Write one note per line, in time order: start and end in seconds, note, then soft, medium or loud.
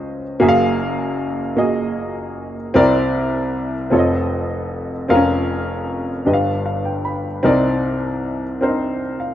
0.00 0.35 C#2 medium
0.00 0.35 C#3 medium
0.00 0.41 C#4 medium
0.00 0.41 F4 medium
0.00 0.41 C5 medium
0.00 0.41 D#5 loud
0.40 2.71 F#1 medium
0.40 2.71 F#2 medium
0.40 1.39 A#3 medium
0.40 1.39 F#4 medium
0.40 1.39 G#4 medium
0.40 0.47 E5 medium
0.49 1.43 F5 loud
1.57 2.56 A#3 medium
1.57 2.56 F#4 medium
1.57 2.56 G#4 medium
1.57 2.56 D#5 medium
2.74 3.88 C2 medium
2.74 3.88 C3 medium
2.74 3.73 C4 loud
2.74 3.73 E4 medium
2.74 3.74 A#4 medium
2.74 3.74 D5 loud
3.90 5.05 F1 medium
3.90 5.05 F2 medium
3.90 4.90 C4 medium
3.90 4.90 F4 medium
3.90 4.91 A4 medium
3.90 3.98 C#5 medium
3.99 4.94 D#5 medium
5.08 6.22 F1 medium
5.08 6.22 F2 medium
5.08 5.15 C4 medium
5.08 6.08 F4 medium
5.08 6.08 A#4 medium
5.08 6.08 F5 medium
5.15 6.11 C#4 medium
6.25 7.39 G1 medium
6.25 7.39 G2 medium
6.25 7.25 D4 medium
6.25 7.25 G4 medium
6.25 7.25 B4 medium
6.25 6.33 D#5 medium
6.33 6.64 F5 medium
6.66 6.83 F5 medium
6.85 7.03 G5 medium
7.05 7.41 B5 medium
7.43 9.34 C2 medium
7.43 9.34 C3 medium
7.43 8.42 C4 medium
7.43 8.43 D#4 medium
7.43 8.43 A#4 medium
7.43 8.43 D5 medium
8.61 9.34 C4 medium
8.61 8.68 D4 soft
8.61 9.00 A#4 medium
8.61 9.01 C5 medium
8.68 9.34 D#4 medium
9.20 9.34 F5 medium